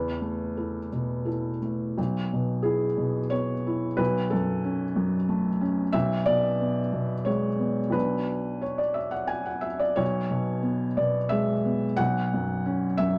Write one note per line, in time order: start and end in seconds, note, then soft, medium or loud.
0.00 1.93 E2 soft
0.00 1.26 B4 medium
0.21 0.77 A3 soft
0.57 0.88 E4 soft
0.57 0.88 A4 soft
0.92 1.49 B2 soft
1.25 1.58 E4 soft
1.25 1.59 A4 soft
1.62 1.97 A3 soft
1.98 3.95 B1 medium
2.33 2.86 B2 soft
2.63 3.19 E4 soft
2.63 3.32 G#4 medium
2.97 3.52 B2 soft
3.30 3.85 B3 soft
3.30 3.97 C#5 medium
3.67 3.99 E4 soft
3.97 5.89 B1 medium
3.97 4.30 B4 medium
4.30 4.84 F#2 medium
4.30 5.60 A4 medium
4.64 5.15 C#4 soft
4.96 5.48 F#2 medium
5.29 5.81 A3 medium
5.61 5.94 C#4 medium
5.92 7.88 B1 medium
5.92 6.26 E5 loud
6.26 6.80 B2 medium
6.26 7.26 D5 loud
6.60 7.13 B3 soft
6.92 7.46 B2 soft
7.25 7.80 G#3 soft
7.25 7.93 C#5 medium
7.59 7.90 B3 soft
7.90 9.94 B1 medium
7.90 9.95 F#3 soft
7.90 9.95 B3 soft
7.90 9.96 D4 soft
7.90 8.62 B4 medium
8.62 8.79 C#5 medium
8.78 8.96 D5 medium
8.94 9.13 E5 medium
9.11 9.30 F#5 medium
9.27 9.47 G#5 medium
9.45 9.65 F#5 medium
9.61 9.81 E5 medium
9.79 9.98 D5 medium
9.96 11.93 B1 medium
9.96 10.98 C#5 loud
10.30 10.85 B2 soft
10.62 11.18 B3 soft
10.97 11.52 B2 soft
10.97 11.32 D5 medium
11.29 11.85 G#3 soft
11.29 11.97 E5 medium
11.65 11.99 B3 medium
11.97 13.18 B1 medium
11.97 12.96 F#5 loud
12.34 12.85 F#2 medium
12.66 13.18 C#4 medium
12.97 13.18 F#2 medium
12.97 13.18 E5 loud